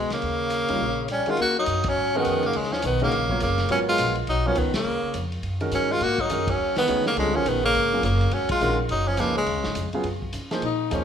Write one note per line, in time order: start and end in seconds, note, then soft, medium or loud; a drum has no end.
0.00 0.11 B2 medium
0.00 0.12 G#3 medium
0.10 1.06 C#3 medium
0.10 1.07 A#3 medium
0.10 muted upright bass stroke soft
0.10 snare soft
0.10 ride soft
0.22 0.66 D#2 medium
0.22 ride soft
0.50 hi-hat pedal medium
0.50 ride medium
0.68 0.79 E2 medium
0.68 0.79 G3 medium
0.68 0.79 C#4 medium
0.68 0.79 D#4 medium
0.68 0.80 F4 medium
0.68 0.80 A#4 medium
0.68 ride medium
0.80 1.24 A#1 medium
1.08 1.30 G3 medium
1.08 1.32 C#4 medium
1.08 cross-stick soft
1.08 hi-hat pedal soft
1.08 ride medium
1.26 1.37 D#3 medium
1.26 1.37 G#3 medium
1.26 1.39 G#3 medium
1.26 1.38 C#4 medium
1.26 1.37 F#4 medium
1.26 1.38 A#4 medium
1.26 muted upright bass stroke soft
1.26 ride soft
1.31 1.40 F4 medium
1.37 1.66 C#2 medium
1.37 1.56 A#3 medium
1.37 ride medium
1.42 1.57 F#4 medium
1.59 1.87 F#3 medium
1.59 1.91 D#4 medium
1.66 1.95 F#2 medium
1.66 hi-hat pedal medium
1.66 ride medium
1.84 2.17 F#3 medium
1.84 kick medium
1.84 ride medium
1.89 2.19 C#4 medium
1.96 2.24 G#2 medium
2.15 2.53 D#3 medium
2.15 2.46 D#3 medium
2.15 2.53 G#3 medium
2.15 2.47 B3 medium
2.15 2.53 C#4 medium
2.15 2.53 F#4 medium
2.15 2.53 A#4 medium
2.25 2.54 F2 medium
2.25 hi-hat pedal medium
2.25 ride medium
2.43 2.55 C#3 medium
2.43 2.58 A#3 medium
2.43 ride soft
2.53 2.83 D#2 medium
2.53 2.74 C#3 medium
2.53 2.75 G#3 medium
2.53 ride medium
2.63 snare soft
2.73 2.83 F3 medium
2.73 2.84 C#4 medium
2.73 snare soft
2.82 3.11 B1 medium
2.82 3.00 D#3 medium
2.82 hi-hat pedal medium
2.82 ride medium
2.86 3.01 B3 medium
3.00 3.38 C#3 medium
3.00 3.11 D#3 medium
3.00 3.11 G#3 medium
3.00 3.11 C#4 medium
3.00 3.12 F#4 medium
3.00 3.12 A#4 medium
3.00 ride soft
3.04 3.40 A#3 medium
3.12 3.41 A#1 medium
3.12 ride medium
3.29 3.40 F#3 medium
3.29 3.40 B3 medium
3.29 3.40 F4 medium
3.29 3.40 A#4 medium
3.29 3.40 C#5 medium
3.29 kick soft
3.40 3.69 F#1 medium
3.40 3.68 C#3 medium
3.40 3.69 A#3 medium
3.40 hi-hat pedal soft
3.40 ride medium
3.58 snare soft
3.58 ride soft
3.69 3.98 G#1 medium
3.69 3.78 F#3 medium
3.69 4.13 F#3 medium
3.69 4.14 B3 medium
3.69 3.79 C#4 medium
3.69 4.14 F4 medium
3.69 4.14 A#4 medium
3.69 4.14 C#5 medium
3.69 ride medium
3.88 4.15 G#3 medium
3.88 4.15 F4 medium
3.98 4.27 A#1 medium
3.98 hi-hat pedal medium
3.98 ride medium
4.15 ride soft
4.27 4.56 B1 medium
4.27 4.47 F#3 medium
4.27 4.49 D#4 medium
4.27 ride medium
4.45 4.58 F3 medium
4.45 4.56 F#3 medium
4.45 4.56 B3 medium
4.45 4.60 C#4 medium
4.45 4.56 F4 medium
4.45 4.57 A#4 medium
4.45 4.57 C#5 medium
4.55 4.73 C#2 medium
4.55 4.74 D#3 medium
4.55 4.75 B3 medium
4.55 hi-hat pedal medium
4.55 ride medium
4.74 5.28 C#3 medium
4.74 5.29 A#3 medium
4.74 muted upright bass stroke soft
4.74 snare medium
4.74 ride medium
4.85 5.02 D#2 medium
5.03 muted upright bass stroke soft
5.14 5.42 F2 medium
5.14 hi-hat pedal medium
5.14 ride medium
5.32 ride soft
5.43 5.71 F#2 medium
5.43 ride medium
5.60 5.99 D#3 medium
5.60 5.99 G#3 medium
5.60 5.99 C#4 medium
5.60 5.99 F#4 medium
5.60 5.99 A#4 medium
5.60 ride soft
5.71 6.00 G2 medium
5.71 5.92 F#3 medium
5.71 5.94 C#4 medium
5.71 hi-hat pedal medium
5.71 ride medium
5.91 6.04 G#3 medium
5.91 6.05 F4 medium
6.01 6.29 G#2 medium
6.01 6.22 A#3 medium
6.01 6.22 F#4 medium
6.01 ride medium
6.18 6.48 F#3 medium
6.18 6.52 D#4 medium
6.18 kick soft
6.30 6.58 F#2 medium
6.30 6.46 D#3 medium
6.30 6.46 G#3 medium
6.30 6.46 C#4 medium
6.30 6.47 F#4 medium
6.30 6.47 A#4 medium
6.30 hi-hat pedal medium
6.30 ride medium
6.47 6.76 F#3 medium
6.47 6.78 C#4 medium
6.47 kick medium
6.47 ride medium
6.59 6.75 D#2 medium
6.76 7.04 D#3 medium
6.76 7.04 B3 medium
6.76 muted upright bass stroke soft
6.76 snare medium
6.76 ride soft
6.88 7.16 D2 medium
6.88 7.04 D#3 medium
6.88 7.04 G#3 medium
6.88 7.04 C#4 medium
6.88 7.04 F#4 medium
6.88 7.04 C#5 medium
6.88 hi-hat pedal medium
6.88 ride medium
7.06 7.16 C#3 medium
7.06 7.17 A#3 medium
7.06 snare medium
7.17 7.45 C#2 medium
7.17 7.36 C#3 medium
7.17 7.33 D3 medium
7.17 7.33 G3 medium
7.17 7.37 G#3 medium
7.17 7.33 C4 medium
7.17 7.33 F4 medium
7.17 7.33 A4 medium
7.17 ride medium
7.34 7.60 D#3 medium
7.34 7.48 F3 medium
7.34 7.60 G#3 medium
7.34 7.60 C#4 medium
7.34 7.50 C#4 medium
7.34 7.60 F#4 medium
7.34 7.60 A#4 medium
7.46 7.73 A#1 medium
7.46 7.63 D#3 medium
7.46 7.64 B3 medium
7.46 hi-hat pedal medium
7.46 ride medium
7.64 8.01 C#3 medium
7.64 8.01 A#3 medium
7.74 8.02 G#1 medium
7.74 ride medium
7.93 8.02 C#3 medium
7.93 8.03 F#3 soft
7.93 8.03 B3 soft
7.93 8.03 F4 medium
7.93 8.03 G#4 medium
8.03 8.31 F#1 medium
8.03 8.34 C#3 medium
8.03 8.35 A#3 medium
8.03 hi-hat pedal medium
8.03 ride medium
8.21 ride soft
8.31 8.49 G#1 medium
8.31 8.50 F#3 medium
8.31 8.50 C#4 medium
8.31 ride medium
8.49 8.77 G#3 medium
8.49 8.78 F4 medium
8.49 muted upright bass stroke soft
8.49 kick medium
8.49 ride medium
8.60 8.89 A#1 medium
8.60 8.77 D#3 medium
8.60 8.77 G#3 medium
8.60 8.77 C#4 medium
8.60 8.77 F#4 medium
8.60 8.78 A#4 medium
8.60 hi-hat pedal medium
8.89 9.17 F#1 medium
8.89 9.10 F#3 medium
8.89 9.09 D#4 medium
8.89 ride medium
9.08 9.20 F3 medium
9.08 9.21 C#4 medium
9.17 9.46 C#2 medium
9.17 9.36 C#3 medium
9.17 9.35 F3 medium
9.17 9.35 A#3 medium
9.17 9.37 A#3 medium
9.17 9.35 D#4 medium
9.17 9.35 G#4 medium
9.17 9.35 B4 medium
9.17 hi-hat pedal medium
9.17 ride medium
9.36 9.90 C#3 medium
9.36 9.91 G#3 medium
9.46 9.56 D#2 medium
9.46 ride medium
9.56 9.65 C#2 medium
9.64 9.75 G#1 medium
9.64 snare medium
9.75 9.92 F2 medium
9.75 hi-hat pedal medium
9.75 ride medium
9.93 10.04 C#3 medium
9.93 10.04 F#3 medium
9.93 10.04 B3 medium
9.93 10.04 F4 medium
9.93 10.04 G#4 medium
9.93 muted upright bass stroke soft
9.93 ride soft
10.03 10.32 F#2 medium
10.03 ride medium
10.22 kick soft
10.33 10.61 C#3 medium
10.33 hi-hat pedal soft
10.33 ride medium
10.51 10.61 F3 medium
10.51 10.61 A#3 medium
10.51 10.62 D#4 medium
10.51 10.62 G#4 medium
10.51 10.62 C5 medium
10.51 snare medium
10.51 ride soft
10.62 10.91 A#2 medium
10.62 10.95 D#4 medium
10.62 ride medium
10.90 11.04 D#2 medium
10.90 11.04 F3 medium
10.90 11.04 A#3 medium
10.90 11.04 C#4 medium
10.90 11.04 D#4 medium
10.90 11.04 G#4 medium
10.90 11.04 C5 medium
10.90 hi-hat pedal medium
10.90 ride medium